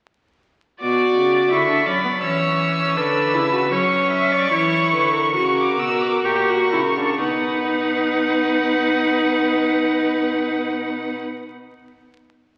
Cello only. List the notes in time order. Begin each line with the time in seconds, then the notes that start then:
0.82 B2
1.16 C#3
1.51 D3
1.87 F#3
2.22 E3
2.97 D3
3.33 C#3
3.72 F#3
4.51 E3
4.93 D3
5.36 C#3
5.79 B2
6.25 A#2
6.73 C#3
7.23 B2